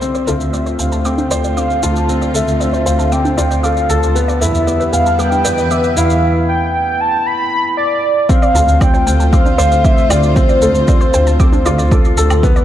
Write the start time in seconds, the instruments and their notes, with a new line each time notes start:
Already playing: string section C5
0.01 string section D3, felt piano C4, shaker
0.14 synth arpeggio sound D5, shaker
0.27 double bass section D2, string section A3, felt piano F4, synth arpeggio sound A4, soft synth lead E5, shaker
0.40 double bass section D2, shaker
0.53 felt piano C4, string section F4, synth arpeggio sound D5, shaker
0.66 synth arpeggio sound C5, shaker
0.79 double bass section D2, felt piano C4, soft synth lead F5, synth arpeggio sound G5, shaker
0.92 synth arpeggio sound A5, shaker
1.05 felt piano C4, soft synth lead G5, synth arpeggio sound D6, shaker
1.18 synth arpeggio sound D4, shaker
1.31 double bass section D2, felt piano C5, synth arpeggio sound D5, shaker
1.44 synth arpeggio sound D5, shaker
1.57 felt piano C4, soft synth lead F5, synth arpeggio sound D6, shaker
1.70 shaker
1.83 double bass section D2, felt piano F4, soft synth lead A5, shaker
1.96 shaker
2.09 felt piano C4, shaker
2.22 synth arpeggio sound D5, shaker
2.34 double bass section D2, felt piano A4, synth arpeggio sound A4, soft synth lead E5, shaker
2.47 double bass section D2, shaker
2.60 felt piano C4, synth arpeggio sound D5, shaker
2.73 synth arpeggio sound C5, shaker
2.86 double bass section D2, felt piano C5, soft synth lead F5, synth arpeggio sound G5, shaker
2.99 synth arpeggio sound A5, shaker
3.12 felt piano C4, soft synth lead G5, synth arpeggio sound D6, shaker
3.25 synth arpeggio sound D4, shaker
3.38 double bass section D2, felt piano F4, synth arpeggio sound D5, shaker
3.51 synth arpeggio sound D5, shaker
3.63 felt piano A4, soft synth lead F5, synth arpeggio sound D6, shaker
3.77 shaker
3.89 double bass section D2, felt piano A4, soft synth lead A5, shaker
4.03 shaker
4.15 felt piano B3, shaker
4.28 synth arpeggio sound D5, shaker
4.36 string section G3
4.41 double bass section E2, felt piano E4, synth arpeggio sound A4, soft synth lead E5, shaker
4.55 double bass section E2, shaker
4.65 felt piano B3, string section E4, synth arpeggio sound D5, shaker
4.80 synth arpeggio sound B4, shaker
4.92 double bass section E2, felt piano B3, soft synth lead F5, synth arpeggio sound G5, shaker
5.06 synth arpeggio sound A5, shaker
5.18 felt piano B3, soft synth lead G5, synth arpeggio sound D6, shaker
5.32 synth arpeggio sound D4, shaker
5.44 double bass section E2, string section B4, felt piano B4, synth arpeggio sound D5, shaker
5.58 synth arpeggio sound D5, shaker
5.70 felt piano B3, soft synth lead E5, synth arpeggio sound D6, shaker
5.84 shaker
5.96 double bass section E2, felt piano E4, soft synth lead F5, shaker
6.10 shaker
6.48 soft synth lead G5
7.01 soft synth lead A5
7.26 soft synth lead B5
7.77 soft synth lead D5
8.29 felt piano C4, soft synth lead F5, kick, shaker
8.42 synth arpeggio sound D5, shaker
8.47 string section C5
8.52 double bass section D2, string section A3, felt piano F4, synth arpeggio sound A4, shaker
8.68 double bass section D2, shaker
8.78 felt piano C4, string section F4, synth arpeggio sound D5, soft synth lead G5, kick, low woodblock, shaker
8.94 synth arpeggio sound C5, shaker
9.07 double bass section D2, felt piano C4, synth arpeggio sound G5, shaker
9.20 synth arpeggio sound A5, shaker
9.32 felt piano C4, soft synth lead F5, synth arpeggio sound D6, kick, shaker
9.46 synth arpeggio sound D4, shaker
9.58 double bass section D2, felt piano C5, synth arpeggio sound D5, shaker
9.72 synth arpeggio sound D5, shaker
9.83 felt piano C4, soft synth lead E5, synth arpeggio sound D6, kick, shaker
9.98 shaker
10.09 double bass section D2, felt piano F4, soft synth lead D5, low woodblock, shaker
10.23 shaker
10.35 felt piano C4, soft synth lead C5, kick, shaker
10.49 synth arpeggio sound D5, shaker
10.62 double bass section D2, felt piano A4, synth arpeggio sound A4, shaker
10.75 double bass section D2, shaker
10.88 felt piano C4, synth arpeggio sound D5, kick, shaker
11.01 synth arpeggio sound C5, shaker
11.14 double bass section D2, felt piano C5, synth arpeggio sound G5, shaker
11.27 synth arpeggio sound A5, shaker
11.40 felt piano C4, synth arpeggio sound D6, kick, shaker
11.52 synth arpeggio sound D4, shaker
11.66 double bass section D2, felt piano F4, synth arpeggio sound D5, shaker
11.78 synth arpeggio sound D5, shaker
11.91 felt piano A4, synth arpeggio sound D6, kick, shaker
12.05 shaker
12.17 double bass section D2, felt piano A4, shaker
12.30 low woodblock, shaker
12.43 felt piano B3, kick, shaker
12.56 string section G3 E4, synth arpeggio sound D5, shaker